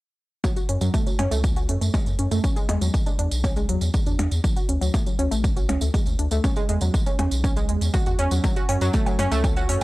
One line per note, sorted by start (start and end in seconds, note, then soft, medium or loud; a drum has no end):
0.44 0.49 F#3 medium
0.44 kick loud
0.44 closed hi-hat soft
0.44 tambourine medium
0.44 percussion blips medium
0.56 0.60 F#4 medium
0.56 closed hi-hat soft
0.56 tambourine soft
0.69 0.77 F#2 medium
0.69 0.72 C#4 medium
0.69 closed hi-hat medium
0.81 0.90 F#2 medium
0.81 0.87 F#3 loud
0.81 closed hi-hat soft
0.81 tambourine medium
0.94 1.02 A3 loud
0.94 kick loud
0.94 closed hi-hat soft
0.94 tambourine medium
1.06 1.12 F#3 medium
1.06 closed hi-hat soft
1.06 tambourine soft
1.19 1.27 F#2 medium
1.19 1.24 C#4 loud
1.19 closed hi-hat medium
1.19 percussion blips medium
1.31 1.70 C#2 medium
1.31 1.39 A3 loud
1.31 closed hi-hat soft
1.31 tambourine medium
1.44 kick loud
1.44 closed hi-hat soft
1.44 tambourine medium
1.56 1.60 F#4 medium
1.56 closed hi-hat soft
1.56 tambourine soft
1.69 1.77 F#2 medium
1.69 1.72 C#4 medium
1.69 closed hi-hat medium
1.81 1.90 F#2 medium
1.81 1.89 A3 medium
1.81 closed hi-hat soft
1.81 tambourine medium
1.94 2.02 G#3 medium
1.94 kick loud
1.94 closed hi-hat soft
1.94 tambourine medium
1.94 percussion blips medium
2.06 2.15 F#2 medium
2.06 closed hi-hat soft
2.06 tambourine soft
2.19 2.27 F#2 medium
2.19 2.24 C#4 medium
2.19 closed hi-hat medium
2.31 2.40 F#2 medium
2.31 2.39 A3 medium
2.31 closed hi-hat soft
2.31 tambourine medium
2.44 2.52 C#4 medium
2.44 kick loud
2.44 closed hi-hat soft
2.44 tambourine medium
2.56 2.64 G#3 loud
2.56 closed hi-hat soft
2.56 tambourine soft
2.69 2.77 E2 medium
2.69 2.74 G#3 loud
2.69 closed hi-hat medium
2.69 percussion blips medium
2.81 2.90 E2 medium
2.81 2.85 F#3 medium
2.81 closed hi-hat soft
2.81 tambourine medium
2.94 kick loud
2.94 closed hi-hat soft
2.94 tambourine medium
3.06 3.12 D4 medium
3.06 closed hi-hat soft
3.06 tambourine soft
3.19 3.27 E2 medium
3.19 3.24 D4 medium
3.19 closed hi-hat medium
3.31 3.70 B1 medium
3.31 closed hi-hat soft
3.31 tambourine medium
3.44 3.52 C#4 medium
3.44 kick loud
3.44 closed hi-hat soft
3.44 tambourine medium
3.44 percussion blips medium
3.56 3.64 G#3 loud
3.56 closed hi-hat soft
3.56 tambourine soft
3.69 3.77 E2 medium
3.69 3.74 F#3 loud
3.69 closed hi-hat medium
3.81 3.90 E2 medium
3.81 closed hi-hat soft
3.81 tambourine medium
3.94 kick loud
3.94 closed hi-hat soft
3.94 tambourine medium
4.06 4.15 E2 medium
4.06 4.12 D4 medium
4.06 closed hi-hat soft
4.06 tambourine soft
4.19 4.27 E2 medium
4.19 4.24 D4 medium
4.19 closed hi-hat medium
4.19 percussion blips medium
4.31 4.40 E2 medium
4.31 closed hi-hat soft
4.31 tambourine medium
4.44 4.49 F#3 medium
4.44 kick loud
4.44 closed hi-hat soft
4.44 tambourine medium
4.56 4.60 F#4 medium
4.56 closed hi-hat soft
4.56 tambourine soft
4.69 4.77 D2 medium
4.69 4.72 C#4 medium
4.69 closed hi-hat medium
4.81 4.90 D2 medium
4.81 4.87 F#3 loud
4.81 closed hi-hat soft
4.81 tambourine medium
4.94 5.02 A3 loud
4.94 kick loud
4.94 closed hi-hat soft
4.94 tambourine medium
4.94 percussion blips medium
5.06 5.12 F#3 medium
5.06 closed hi-hat soft
5.06 tambourine soft
5.19 5.27 D2 medium
5.19 5.24 C#4 loud
5.19 closed hi-hat medium
5.31 5.70 A1 medium
5.31 5.39 A3 loud
5.31 closed hi-hat soft
5.31 tambourine medium
5.44 kick loud
5.44 closed hi-hat soft
5.44 tambourine medium
5.56 5.60 F#4 medium
5.56 closed hi-hat soft
5.56 tambourine soft
5.69 5.77 D2 medium
5.69 5.72 C#4 medium
5.69 closed hi-hat medium
5.69 percussion blips medium
5.81 5.90 D2 medium
5.81 5.89 A3 medium
5.81 closed hi-hat soft
5.81 tambourine medium
5.94 6.02 G#3 medium
5.94 kick loud
5.94 closed hi-hat soft
5.94 tambourine medium
6.06 6.15 D2 medium
6.06 closed hi-hat soft
6.06 tambourine soft
6.19 6.27 D2 medium
6.19 6.24 D4 medium
6.19 closed hi-hat medium
6.31 6.40 D2 medium
6.31 6.39 A3 loud
6.31 closed hi-hat soft
6.31 tambourine medium
6.44 6.52 C#4 medium
6.44 kick loud
6.44 closed hi-hat soft
6.44 tambourine medium
6.44 percussion blips medium
6.56 6.64 G#3 loud
6.56 closed hi-hat soft
6.56 tambourine soft
6.69 6.77 E2 medium
6.69 6.74 G#3 loud
6.69 closed hi-hat medium
6.81 6.90 E2 medium
6.81 6.85 F#3 medium
6.81 closed hi-hat soft
6.81 tambourine medium
6.94 kick loud
6.94 closed hi-hat soft
6.94 tambourine medium
7.06 7.12 C#4 medium
7.06 closed hi-hat soft
7.06 tambourine soft
7.19 7.27 E2 medium
7.19 7.24 C#4 medium
7.19 closed hi-hat medium
7.19 percussion blips medium
7.31 7.70 B1 medium
7.31 closed hi-hat soft
7.31 tambourine medium
7.44 7.52 C#4 medium
7.44 kick loud
7.44 closed hi-hat soft
7.44 tambourine medium
7.56 7.64 G#3 medium
7.56 closed hi-hat soft
7.56 tambourine soft
7.69 7.77 E2 medium
7.69 7.72 G#3 medium
7.69 closed hi-hat medium
7.81 7.90 E2 medium
7.81 closed hi-hat soft
7.81 tambourine medium
7.94 7.99 F#4 medium
7.94 kick loud
7.94 closed hi-hat soft
7.94 tambourine medium
7.94 percussion blips medium
8.06 8.15 E2 medium
8.06 8.10 F#4 medium
8.06 closed hi-hat soft
8.06 tambourine soft
8.19 8.27 E2 medium
8.19 8.24 C#4 loud
8.19 closed hi-hat medium
8.31 8.40 E2 medium
8.31 8.37 F#3 medium
8.31 closed hi-hat soft
8.31 tambourine medium
8.44 8.49 F#3 medium
8.44 kick loud
8.44 closed hi-hat soft
8.44 tambourine medium
8.44 percussion blips medium
8.56 8.60 F#4 medium
8.56 closed hi-hat soft
8.56 tambourine soft
8.69 8.77 F#2 medium
8.69 8.72 C#4 medium
8.69 open hi-hat loud
8.69 low woodblock soft
8.81 8.90 F#2 medium
8.81 8.87 F#3 loud
8.81 closed hi-hat soft
8.81 tambourine medium
8.93 9.02 A3 loud
8.93 kick loud
8.93 closed hi-hat soft
8.93 tambourine medium
9.06 9.12 F#3 medium
9.06 closed hi-hat soft
9.06 tambourine soft
9.06 low woodblock soft
9.19 9.27 F#2 medium
9.19 9.24 C#4 loud
9.19 open hi-hat loud
9.19 percussion blips medium
9.31 9.70 C#2 medium
9.31 9.40 A3 loud
9.31 closed hi-hat soft
9.31 tambourine medium
9.44 kick loud
9.44 closed hi-hat soft
9.44 tambourine medium
9.44 low woodblock soft
9.56 9.60 F#4 medium
9.56 closed hi-hat soft
9.56 tambourine soft
9.69 9.77 F#2 loud
9.69 9.72 C#4 medium
9.69 open hi-hat loud